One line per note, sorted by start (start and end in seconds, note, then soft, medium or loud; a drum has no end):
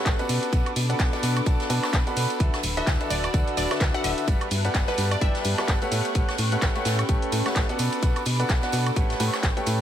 0.00 0.15 A3 loud
0.00 0.29 C#4 medium
0.00 0.15 G4 medium
0.00 0.29 G4 medium
0.00 0.15 A4 medium
0.00 0.15 B4 medium
0.00 0.26 B4 medium
0.00 0.15 C#5 medium
0.00 0.15 F#5 loud
0.00 0.27 G5 medium
0.00 4.94 B5 medium
0.00 0.27 C#6 medium
0.00 0.26 F#6 medium
0.05 0.16 A1 medium
0.05 kick loud
0.05 snare loud
0.05 clap loud
0.05 closed hi-hat medium
0.05 ride medium
0.05 tambourine medium
0.05 shaker soft
0.19 0.50 B3 loud
0.19 0.50 F#4 medium
0.19 0.50 A4 medium
0.19 0.50 B4 loud
0.19 0.50 D5 loud
0.19 0.50 F#5 loud
0.19 closed hi-hat soft
0.19 tambourine soft
0.19 shaker soft
0.29 0.39 B2 medium
0.29 4.94 D4 medium
0.29 9.81 B4 medium
0.29 2.38 A5 medium
0.29 2.38 D6 medium
0.29 open hi-hat loud
0.29 ride medium
0.29 tambourine loud
0.29 shaker medium
0.43 3.16 A4 medium
0.43 closed hi-hat soft
0.43 tambourine soft
0.43 shaker soft
0.53 0.62 B1 loud
0.53 0.70 F#4 medium
0.53 0.70 A4 medium
0.53 0.70 B4 medium
0.53 0.70 D5 medium
0.53 0.70 F#5 medium
0.53 kick loud
0.53 closed hi-hat medium
0.53 ride medium
0.53 tambourine medium
0.53 shaker soft
0.66 closed hi-hat soft
0.66 ride soft
0.66 high woodblock medium
0.66 shaker soft
0.76 0.94 B2 medium
0.76 open hi-hat loud
0.76 ride medium
0.76 tambourine medium
0.76 shaker medium
0.90 1.10 B3 loud
0.90 1.10 F#4 medium
0.90 1.10 A4 medium
0.90 1.10 B4 medium
0.90 1.10 D5 medium
0.90 1.10 F#5 loud
0.90 closed hi-hat soft
0.90 tambourine soft
0.90 shaker soft
0.99 1.09 B1 medium
0.99 kick loud
0.99 snare loud
0.99 clap loud
0.99 closed hi-hat medium
0.99 ride medium
0.99 tambourine medium
0.99 shaker soft
1.13 1.39 B3 loud
1.13 1.39 F#4 medium
1.13 1.39 A4 medium
1.13 1.39 B4 medium
1.13 1.39 D5 medium
1.13 1.39 F#5 loud
1.13 snare soft
1.13 closed hi-hat soft
1.13 tambourine soft
1.23 1.41 B2 loud
1.23 open hi-hat loud
1.23 ride medium
1.23 tambourine loud
1.23 shaker medium
1.37 closed hi-hat soft
1.37 high woodblock medium
1.37 shaker soft
1.46 1.56 B1 loud
1.46 1.68 B3 medium
1.46 1.68 F#4 medium
1.46 1.68 A4 medium
1.46 1.68 B4 medium
1.46 1.68 D5 medium
1.46 1.68 A5 loud
1.46 kick loud
1.46 closed hi-hat medium
1.46 ride medium
1.46 tambourine medium
1.46 shaker soft
1.60 snare soft
1.60 closed hi-hat soft
1.60 tambourine soft
1.60 shaker soft
1.70 1.80 B2 loud
1.70 1.97 B3 loud
1.70 1.97 F#4 medium
1.70 1.97 A4 medium
1.70 1.97 B4 medium
1.70 1.97 D5 medium
1.70 1.97 A5 loud
1.70 open hi-hat loud
1.70 ride medium
1.70 tambourine medium
1.70 shaker medium
1.83 snare medium
1.83 clap soft
1.83 closed hi-hat soft
1.83 tambourine soft
1.83 high woodblock medium
1.83 shaker soft
1.93 2.03 B1 loud
1.93 kick loud
1.93 snare loud
1.93 clap loud
1.93 closed hi-hat medium
1.93 ride medium
1.93 tambourine medium
1.93 shaker soft
2.07 2.38 B3 loud
2.07 2.38 F#4 medium
2.07 2.38 A4 medium
2.07 2.38 B4 medium
2.07 2.38 D5 medium
2.07 2.38 B5 loud
2.07 closed hi-hat soft
2.07 tambourine soft
2.07 shaker soft
2.16 2.26 B2 medium
2.16 open hi-hat loud
2.16 ride medium
2.16 tambourine medium
2.16 shaker medium
2.30 closed hi-hat soft
2.30 ride soft
2.30 tambourine soft
2.30 shaker soft
2.40 2.50 D2 loud
2.40 2.58 D3 medium
2.40 2.58 F#4 medium
2.40 2.58 A4 medium
2.40 2.58 B4 medium
2.40 2.58 D5 medium
2.40 2.58 E5 medium
2.40 4.26 F#5 medium
2.40 4.26 E6 loud
2.40 kick loud
2.40 closed hi-hat medium
2.40 ride medium
2.40 tambourine medium
2.40 shaker soft
2.53 snare medium
2.53 closed hi-hat soft
2.53 high woodblock medium
2.53 shaker soft
2.58 4.88 E5 medium
2.63 2.81 D1 medium
2.63 4.28 F#4 medium
2.63 open hi-hat loud
2.63 ride medium
2.63 tambourine loud
2.63 shaker medium
2.77 2.97 D3 loud
2.77 2.97 F#4 medium
2.77 2.97 A4 medium
2.77 2.97 B4 medium
2.77 2.97 D5 medium
2.77 2.97 E5 loud
2.77 3.09 E5 loud
2.77 closed hi-hat soft
2.77 tambourine soft
2.77 shaker soft
2.87 2.97 D2 medium
2.87 kick loud
2.87 snare loud
2.87 clap loud
2.87 closed hi-hat medium
2.87 ride medium
2.87 tambourine soft
2.87 shaker soft
3.00 3.26 D3 loud
3.00 3.26 F#4 medium
3.00 3.26 A4 medium
3.00 3.26 B4 medium
3.00 3.26 D5 medium
3.00 3.26 E5 loud
3.00 closed hi-hat soft
3.00 tambourine soft
3.10 3.28 D1 loud
3.10 3.19 D5 medium
3.10 open hi-hat medium
3.10 ride medium
3.10 tambourine loud
3.10 shaker medium
3.23 3.30 D5 medium
3.23 closed hi-hat soft
3.23 tambourine soft
3.23 high woodblock medium
3.23 shaker soft
3.34 3.44 D2 loud
3.34 3.68 D3 medium
3.34 3.68 F#4 medium
3.34 3.68 A4 medium
3.34 3.68 B4 medium
3.34 3.68 D5 medium
3.34 3.68 F#5 loud
3.34 kick loud
3.34 closed hi-hat medium
3.34 ride medium
3.34 tambourine medium
3.34 shaker soft
3.48 closed hi-hat soft
3.48 shaker soft
3.57 3.67 D1 loud
3.57 3.74 D5 loud
3.57 open hi-hat loud
3.57 ride medium
3.57 tambourine medium
3.57 shaker medium
3.71 3.90 D3 loud
3.71 3.90 F#4 medium
3.71 3.90 A4 medium
3.71 3.90 B4 medium
3.71 3.90 D5 medium
3.71 3.90 E5 loud
3.71 snare medium
3.71 closed hi-hat soft
3.71 tambourine soft
3.71 high woodblock medium
3.71 shaker soft
3.80 3.91 D2 medium
3.80 kick loud
3.80 snare loud
3.80 clap loud
3.80 closed hi-hat medium
3.80 ride medium
3.80 tambourine medium
3.80 shaker soft
3.94 4.25 D3 loud
3.94 4.25 F#4 loud
3.94 4.25 A4 medium
3.94 4.25 B4 loud
3.94 4.25 D5 medium
3.94 4.25 E5 loud
3.94 4.02 F#5 medium
3.94 closed hi-hat soft
3.94 tambourine soft
3.94 shaker soft
4.04 4.14 D1 medium
4.04 4.33 E5 medium
4.04 open hi-hat loud
4.04 ride medium
4.04 tambourine medium
4.04 shaker medium
4.18 closed hi-hat soft
4.18 tambourine soft
4.18 shaker soft
4.27 4.37 G1 loud
4.27 4.45 G3 medium
4.27 6.67 B3 medium
4.27 4.45 G4 medium
4.27 4.45 A4 medium
4.27 4.45 B4 medium
4.27 4.45 D5 medium
4.27 4.45 F#5 loud
4.27 5.90 A5 medium
4.27 7.76 F#6 medium
4.27 kick loud
4.27 closed hi-hat loud
4.27 ride medium
4.27 tambourine medium
4.27 shaker soft
4.41 7.79 G4 medium
4.41 closed hi-hat soft
4.41 ride soft
4.41 high woodblock medium
4.41 shaker soft
4.51 4.69 G2 medium
4.51 open hi-hat loud
4.51 ride medium
4.51 tambourine medium
4.51 shaker medium
4.65 4.85 G3 loud
4.65 4.85 G4 medium
4.65 4.85 A4 medium
4.65 4.85 B4 medium
4.65 4.85 D5 medium
4.65 4.85 F#5 loud
4.65 closed hi-hat soft
4.65 tambourine soft
4.65 shaker soft
4.74 4.84 G1 medium
4.74 kick loud
4.74 snare loud
4.74 clap loud
4.74 closed hi-hat medium
4.74 ride medium
4.74 tambourine soft
4.74 shaker soft
4.88 5.14 G3 loud
4.88 5.14 G4 medium
4.88 5.14 A4 medium
4.88 5.09 B4 loud
4.88 5.14 B4 medium
4.88 5.14 D5 medium
4.88 5.14 F#5 loud
4.88 6.68 A5 loud
4.88 snare soft
4.88 closed hi-hat soft
4.88 tambourine soft
4.97 5.16 G2 loud
4.97 open hi-hat medium
4.97 ride medium
4.97 tambourine medium
4.97 shaker medium
5.11 5.19 D5 loud
5.11 closed hi-hat soft
5.11 tambourine soft
5.11 high woodblock medium
5.11 shaker soft
5.21 5.31 G1 loud
5.21 5.55 G3 medium
5.21 5.55 G4 medium
5.21 5.55 A4 medium
5.21 5.55 B4 medium
5.21 5.55 D5 medium
5.21 5.88 E5 medium
5.21 5.55 G5 loud
5.21 kick loud
5.21 closed hi-hat medium
5.21 ride medium
5.21 tambourine medium
5.21 shaker soft
5.35 snare soft
5.35 closed hi-hat soft
5.35 shaker soft
5.44 5.55 G2 loud
5.44 open hi-hat loud
5.44 ride medium
5.44 tambourine medium
5.44 shaker medium
5.58 5.78 G3 loud
5.58 5.78 G4 loud
5.58 5.78 A4 medium
5.58 5.78 B4 medium
5.58 5.78 D5 medium
5.58 5.78 F#5 loud
5.58 snare soft
5.58 clap soft
5.58 closed hi-hat soft
5.58 tambourine soft
5.58 high woodblock medium
5.58 shaker soft
5.68 5.78 G1 medium
5.68 kick loud
5.68 snare loud
5.68 clap loud
5.68 closed hi-hat medium
5.68 ride medium
5.68 tambourine medium
5.68 shaker soft
5.82 6.13 A3 loud
5.82 6.13 G4 medium
5.82 6.13 A4 loud
5.82 6.13 B4 loud
5.82 6.13 C#5 medium
5.82 6.13 F#5 loud
5.82 closed hi-hat soft
5.82 tambourine soft
5.82 shaker soft
5.92 6.02 A2 medium
5.92 7.79 C#4 loud
5.92 7.77 G5 medium
5.92 7.77 C#6 medium
5.92 open hi-hat medium
5.92 ride medium
5.92 tambourine medium
5.92 shaker medium
6.05 closed hi-hat soft
6.05 ride soft
6.05 tambourine soft
6.05 shaker soft
6.15 6.25 A1 loud
6.15 6.33 A3 medium
6.15 6.33 G4 medium
6.15 6.33 A4 medium
6.15 6.33 B4 medium
6.15 6.33 C#5 medium
6.15 6.33 F#5 medium
6.15 kick loud
6.15 closed hi-hat loud
6.15 ride medium
6.15 tambourine medium
6.15 shaker soft
6.29 snare medium
6.29 closed hi-hat soft
6.29 high woodblock medium
6.29 shaker soft
6.38 6.57 A2 medium
6.38 open hi-hat loud
6.38 ride medium
6.38 tambourine medium
6.38 shaker medium
6.46 9.81 B5 medium
6.52 6.72 A3 loud
6.52 6.72 G4 medium
6.52 6.72 A4 medium
6.52 6.72 B4 medium
6.52 6.72 C#5 medium
6.52 6.72 F#5 loud
6.52 closed hi-hat soft
6.52 tambourine soft
6.52 shaker soft
6.62 6.72 A1 medium
6.62 kick loud
6.62 snare loud
6.62 clap loud
6.62 closed hi-hat medium
6.62 ride medium
6.62 tambourine medium
6.62 shaker soft
6.76 7.01 A3 loud
6.76 7.01 G4 medium
6.76 7.01 A4 medium
6.76 7.01 B4 medium
6.76 7.01 C#5 medium
6.76 7.01 F#5 loud
6.76 closed hi-hat soft
6.76 tambourine soft
6.85 7.03 A2 loud
6.85 snare loud
6.85 open hi-hat medium
6.85 ride medium
6.85 tambourine medium
6.85 shaker medium
6.99 closed hi-hat soft
6.99 tambourine soft
6.99 high woodblock medium
6.99 shaker soft
7.09 7.19 A1 loud
7.09 7.43 A3 medium
7.09 7.43 G4 medium
7.09 7.43 A4 medium
7.09 7.43 B4 medium
7.09 7.43 C#5 medium
7.09 7.43 G5 loud
7.09 kick loud
7.09 closed hi-hat medium
7.09 ride medium
7.09 tambourine soft
7.09 shaker soft
7.22 closed hi-hat soft
7.22 shaker soft
7.32 7.42 A2 loud
7.32 open hi-hat loud
7.32 ride medium
7.32 tambourine medium
7.32 shaker medium
7.46 7.65 A3 loud
7.46 7.65 G4 loud
7.46 7.65 A4 medium
7.46 7.65 B4 loud
7.46 7.65 C#5 medium
7.46 7.65 F#5 loud
7.46 snare medium
7.46 closed hi-hat soft
7.46 tambourine soft
7.46 high woodblock medium
7.46 shaker soft
7.56 7.66 A1 loud
7.56 kick loud
7.56 snare loud
7.56 clap loud
7.56 closed hi-hat loud
7.56 ride medium
7.56 tambourine medium
7.56 shaker soft
7.69 8.00 B3 loud
7.69 8.00 F#4 loud
7.69 8.00 A4 loud
7.69 8.00 B4 medium
7.69 8.00 D5 loud
7.69 8.00 F#5 loud
7.69 closed hi-hat soft
7.69 tambourine soft
7.69 shaker soft
7.79 7.89 B2 medium
7.79 8.96 D4 medium
7.79 8.95 A5 medium
7.79 8.95 D6 medium
7.79 open hi-hat medium
7.79 ride medium
7.79 tambourine medium
7.79 shaker medium
7.92 closed hi-hat soft
7.92 tambourine soft
7.92 shaker soft
8.02 8.12 B1 loud
8.02 8.20 B3 medium
8.02 8.20 F#4 medium
8.02 8.20 A4 medium
8.02 8.20 B4 medium
8.02 8.20 D5 medium
8.02 8.20 F#5 loud
8.02 kick loud
8.02 closed hi-hat loud
8.02 ride medium
8.02 tambourine soft
8.02 shaker soft
8.07 9.81 A4 medium
8.16 closed hi-hat soft
8.16 ride soft
8.16 tambourine soft
8.16 high woodblock medium
8.16 shaker soft
8.25 8.44 B2 medium
8.25 open hi-hat loud
8.25 ride medium
8.25 tambourine medium
8.25 shaker medium
8.40 8.60 B3 medium
8.40 8.60 F#4 medium
8.40 8.60 A4 medium
8.40 8.60 B4 medium
8.40 8.60 D5 medium
8.40 8.60 F#5 loud
8.40 closed hi-hat soft
8.40 tambourine soft
8.40 shaker soft
8.49 8.59 B1 medium
8.49 kick loud
8.49 snare loud
8.49 clap loud
8.49 closed hi-hat loud
8.49 ride medium
8.49 tambourine soft
8.49 shaker soft
8.62 8.89 B3 medium
8.62 8.89 F#4 medium
8.62 8.89 A4 medium
8.62 8.89 B4 medium
8.62 8.89 D5 medium
8.62 8.89 F#5 loud
8.62 snare soft
8.62 closed hi-hat soft
8.62 tambourine soft
8.62 shaker soft
8.72 8.91 B2 loud
8.72 open hi-hat medium
8.72 ride medium
8.72 tambourine medium
8.72 shaker medium
8.86 closed hi-hat soft
8.86 tambourine soft
8.86 high woodblock medium
8.86 shaker soft
8.96 9.14 A1 loud
8.96 9.18 A3 medium
8.96 9.81 C#4 medium
8.96 9.18 G4 medium
8.96 9.18 A4 medium
8.96 9.18 B4 medium
8.96 9.18 C#5 medium
8.96 9.18 F#5 loud
8.96 9.81 G5 medium
8.96 9.81 C#6 medium
8.96 kick loud
8.96 closed hi-hat medium
8.96 ride medium
8.96 tambourine soft
8.96 shaker soft
9.10 snare soft
9.10 closed hi-hat soft
9.10 shaker soft
9.20 9.30 A2 loud
9.20 9.47 A3 loud
9.20 9.47 G4 medium
9.20 9.47 A4 medium
9.20 9.47 B4 medium
9.20 9.47 C#5 medium
9.20 9.47 F#5 loud
9.20 open hi-hat loud
9.20 ride medium
9.20 tambourine loud
9.20 shaker medium
9.33 snare medium
9.33 clap soft
9.33 closed hi-hat soft
9.33 tambourine soft
9.33 high woodblock medium
9.33 shaker soft
9.43 9.53 A1 loud
9.43 kick loud
9.43 snare loud
9.43 clap loud
9.43 closed hi-hat loud
9.43 ride medium
9.43 tambourine medium
9.43 shaker soft
9.57 9.81 A3 loud
9.57 9.81 G4 medium
9.57 9.81 A4 medium
9.57 9.81 B4 medium
9.57 9.81 C#5 medium
9.57 9.81 G5 loud
9.57 closed hi-hat soft
9.57 tambourine soft
9.57 shaker soft
9.66 9.81 A2 loud
9.66 open hi-hat medium
9.66 ride medium
9.66 tambourine loud
9.66 shaker medium